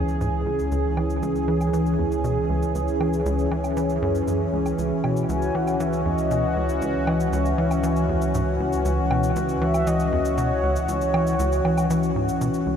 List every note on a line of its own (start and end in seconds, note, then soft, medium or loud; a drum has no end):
0.00 4.76 C#2 medium
0.00 12.77 E3 medium
0.00 12.77 C#4 medium
0.00 4.74 G#4 medium
0.08 cabasa soft
0.21 0.29 G#2 medium
0.21 cabasa medium
0.46 0.61 C#2 medium
0.59 cabasa soft
0.72 0.86 C#2 medium
0.72 cabasa medium
0.97 1.18 E3 medium
0.97 low woodblock medium
1.10 cabasa soft
1.22 1.44 C#2 medium
1.22 cabasa medium
1.35 cabasa soft
1.48 1.69 E3 medium
1.61 cabasa medium
1.61 low woodblock medium
1.73 1.95 E3 medium
1.73 cabasa medium
1.86 cabasa soft
1.99 2.07 E2 medium
2.12 cabasa medium
2.24 2.38 B2 medium
2.24 cabasa medium
2.50 2.64 C#2 medium
2.62 cabasa soft
2.75 2.89 C#2 medium
2.75 cabasa medium
2.88 cabasa soft
3.00 3.22 E3 medium
3.00 low woodblock medium
3.13 cabasa medium
3.26 3.47 C#2 loud
3.26 cabasa medium
3.39 cabasa soft
3.51 3.73 E3 medium
3.51 low woodblock soft
3.64 cabasa soft
3.64 low woodblock soft
3.77 3.98 E3 medium
3.77 cabasa medium
3.90 cabasa soft
4.02 4.24 F#2 loud
4.15 cabasa soft
4.28 4.49 F#2 medium
4.28 cabasa medium
4.53 4.74 C#2 medium
4.66 cabasa soft
4.66 low woodblock soft
4.78 4.93 C#2 medium
4.78 12.77 C#2 medium
4.78 12.77 F#4 medium
4.78 cabasa medium
5.04 5.25 B2 medium
5.04 low woodblock medium
5.17 cabasa soft
5.29 5.51 C#2 loud
5.29 5.57 G#5 loud
5.29 cabasa medium
5.42 cabasa soft
5.55 5.76 E3 medium
5.55 5.82 F#5 loud
5.67 cabasa soft
5.67 low woodblock soft
5.80 6.02 E3 medium
5.80 6.05 E5 loud
5.80 cabasa medium
5.93 cabasa soft
6.06 6.14 E2 medium
6.06 6.83 D#5 loud
6.18 cabasa soft
6.31 6.45 B2 medium
6.31 cabasa medium
6.56 6.71 C#2 medium
6.69 cabasa soft
6.82 6.96 C#2 medium
6.82 7.09 C#5 medium
6.82 cabasa medium
7.07 7.29 E3 medium
7.07 7.34 D#5 medium
7.07 low woodblock medium
7.20 cabasa soft
7.33 7.54 C#2 medium
7.33 8.34 E5 medium
7.33 cabasa medium
7.46 cabasa soft
7.58 7.79 E3 medium
7.71 cabasa soft
7.71 low woodblock soft
7.83 8.05 E3 medium
7.83 cabasa medium
7.96 cabasa soft
8.09 8.17 E2 medium
8.22 cabasa soft
8.34 8.43 G#2 medium
8.34 cabasa medium
8.60 8.74 C#2 medium
8.73 cabasa soft
8.85 8.99 C#2 medium
8.85 cabasa medium
9.11 9.32 B2 medium
9.11 low woodblock medium
9.23 cabasa soft
9.36 9.57 C#2 loud
9.36 cabasa medium
9.49 cabasa soft
9.62 9.83 E3 medium
9.62 9.89 E5 loud
9.74 cabasa soft
9.74 low woodblock soft
9.87 10.08 E3 medium
9.87 10.37 D#5 loud
9.87 cabasa medium
10.00 cabasa soft
10.12 10.21 E2 medium
10.25 cabasa soft
10.38 10.52 B2 medium
10.38 10.85 C#5 medium
10.38 cabasa medium
10.63 10.77 C#2 medium
10.76 cabasa soft
10.89 11.03 C#2 medium
10.89 12.37 C#5 loud
10.89 cabasa medium
11.01 cabasa soft
11.14 11.35 E3 medium
11.14 low woodblock medium
11.27 cabasa soft
11.39 11.61 C#2 loud
11.39 cabasa medium
11.52 cabasa soft
11.65 11.86 E3 medium
11.65 low woodblock soft
11.78 cabasa soft
11.78 low woodblock medium
11.90 12.12 E3 medium
11.90 cabasa medium
12.03 cabasa soft
12.16 12.30 G#2 medium
12.29 cabasa soft
12.41 12.50 B2 medium
12.41 cabasa medium
12.54 cabasa soft
12.67 12.77 C#2 medium